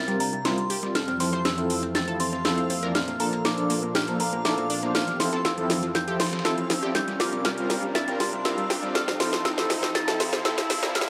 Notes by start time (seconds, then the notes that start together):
Already playing: C3 G3 D4 F4 A#4 F5 A6, riser
0.08 G3 C4 F4 A#4, snare, closed hi-hat
0.20 G3 A#5, closed hi-hat, open hi-hat
0.33 G3, closed hi-hat
0.45 G3 C4 E4 F4 A#4 C6, snare, closed hi-hat
0.58 G3, closed hi-hat
0.70 G4, closed hi-hat, open hi-hat
0.83 G3 C4 F4 D5, snare, closed hi-hat
0.95 F2 E3 F3 G4 A4 F6, snare, closed hi-hat
1.08 C4, snare, closed hi-hat
1.20 F3 C4 E4 A4 C6, snare, closed hi-hat, open hi-hat
1.33 C5, snare
1.45 C4 E6, snare, closed hi-hat
1.58 F3 C4 E4 A4, closed hi-hat
1.70 closed hi-hat, open hi-hat
1.83 C4, closed hi-hat
1.95 C4 A6, snare, closed hi-hat
2.08 F3 C4 E4 A4, closed hi-hat
2.20 C4 C6, closed hi-hat, open hi-hat
2.33 C4, snare
2.45 F3 C4 E4 A4 C5 E6, snare, closed hi-hat
2.57 C4, closed hi-hat
2.70 C4, closed hi-hat, open hi-hat
2.83 F3 C4 E4 A#4 D5, snare, closed hi-hat
2.95 A#2 F3 A#3 D4 C5 F6, snare, closed hi-hat
3.08 A#3, snare, closed hi-hat
3.20 F3 A#3 D4 A4 A#5, closed hi-hat, open hi-hat
3.33 A#3, closed hi-hat
3.45 A#3 D6, snare, closed hi-hat
3.58 F3 A#3 D4 A4, closed hi-hat
3.70 A#3, closed hi-hat, open hi-hat
3.83 A#3, closed hi-hat
3.95 G4 F6, snare, closed hi-hat
4.08 F3 A#3 D4 A4, snare, closed hi-hat
4.20 A#3 A#5, closed hi-hat, open hi-hat
4.33 A#3, closed hi-hat
4.45 F3 A#3 D4 E4 A4 D6, snare, closed hi-hat
4.58 A#3, closed hi-hat
4.70 D4, closed hi-hat, open hi-hat
4.83 F3 A#3 D4 C5, snare, closed hi-hat
4.95 F2 E3 F4 G4 F6, snare, closed hi-hat
5.08 F3, snare, closed hi-hat
5.20 F3 C4 E4 A4 C6, snare, closed hi-hat, open hi-hat
5.33 A4, snare, closed hi-hat
5.45 F3 E6, snare, closed hi-hat
5.58 F3 C4 E4 A4, closed hi-hat
5.70 snare, closed hi-hat, open hi-hat
5.83 F3, closed hi-hat
5.95 F3 G6, snare, closed hi-hat
6.08 F3 C4 E4 G4 A4, closed hi-hat
6.20 F3 C6, snare, closed hi-hat, open hi-hat
6.26 snare, closed hi-hat
6.33 F3, snare, closed hi-hat
6.39 snare, closed hi-hat
6.45 F3 C4 E4 A4 E6, snare, closed hi-hat
6.58 F3, closed hi-hat
6.70 F3, snare, closed hi-hat, open hi-hat
6.83 F3 C4 E4 G4 D5, snare, closed hi-hat
6.95 C3 G3 D4 F4 A#4 G6, snare, closed hi-hat
7.08 G3, snare, closed hi-hat
7.20 G3 C4 F4 A#4 D6, snare, closed hi-hat, open hi-hat
7.33 G3, closed hi-hat
7.45 G3 F6, snare, closed hi-hat
7.58 G3 C4 F4 A#4, closed hi-hat
7.70 G3, snare, closed hi-hat, open hi-hat
7.83 G3
7.95 E4 A6, snare, closed hi-hat
8.08 G3 C4 F4 A#4, snare, closed hi-hat
8.20 G3 C6, snare, closed hi-hat, open hi-hat
8.33 G3, closed hi-hat
8.45 G3 C4 E4 F4 A#4 E6, snare, closed hi-hat
8.58 G3, closed hi-hat
8.70 G4, snare, closed hi-hat, open hi-hat
8.83 G3 C4 F4 D5, snare, closed hi-hat
8.95 F2 E3 F3 G4 A4 F6, snare, closed hi-hat
9.08 C4, snare, closed hi-hat
9.20 F3 C4 E4 A4 C6, snare, closed hi-hat, open hi-hat
9.33 C5, snare, closed hi-hat
9.45 C4 E6, snare, closed hi-hat
9.58 F3 C4 E4 A4, snare, closed hi-hat
9.70 snare, closed hi-hat, open hi-hat
9.83 C4, snare, closed hi-hat
9.95 C4 A6, snare, closed hi-hat
10.08 F3 C4 E4 A4, snare, closed hi-hat
10.20 C4 C6, snare, closed hi-hat, open hi-hat
10.33 C4, snare, closed hi-hat
10.45 F3 C4 E4 A4 C5 E6, snare, closed hi-hat
10.58 C4, snare, closed hi-hat
10.70 C4, snare, closed hi-hat, open hi-hat
10.83 F3 C4 E4 A#4 D5, snare
10.95 A#2 F3 A#3 D4 C5 F6, snare, closed hi-hat
11.01 snare